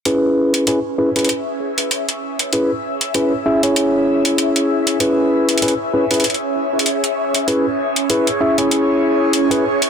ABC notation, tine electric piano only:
X:1
M:4/4
L:1/16
Q:"Swing 16ths" 1/4=97
K:C#m
V:1 name="Tine electric piano"
[CEGB]4 [CEGB] z [CEGB] [CEGB] z8 | [CEGB] z3 [CEGB] z [CEGe] [CEGc]8- [CEGc] | [CEGB]4 [CEGB] z [CEGB] [CEGB] z8 | [CEGB] z3 [CEGB] z [CEGe] [CEGc]6 [CEGB] z2 |]